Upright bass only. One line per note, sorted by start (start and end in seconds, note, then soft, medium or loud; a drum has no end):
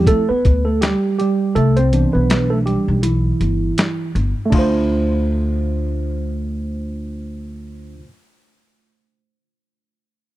0.30 muted upright bass stroke soft
0.45 0.92 D2 medium
1.56 2.03 C2 medium
2.15 2.74 B1 medium
2.88 3.31 B1 medium
3.41 3.71 G1 medium
4.15 4.32 G1 medium
4.52 8.00 D2 medium